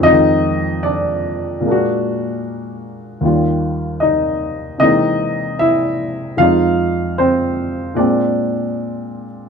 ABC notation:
X:1
M:4/4
L:1/8
Q:"Swing" 1/4=76
K:Fdor
V:1 name="Upright piano"
[Ee]2 [Dd]4 z2 | z2 [Ee]2 [^D^d]2 [=E=e]2 | [Ff]2 [Cc]2 [Dd]3 z |]
V:2 name="Upright piano" clef=bass
[F,,E,F,A,]4 [B,,A,B,D^F]4 | [E,,E,G,F]4 [C,=E,^G,B,C]4 | [F,,F,A,E]4 [B,,A,C]4 |]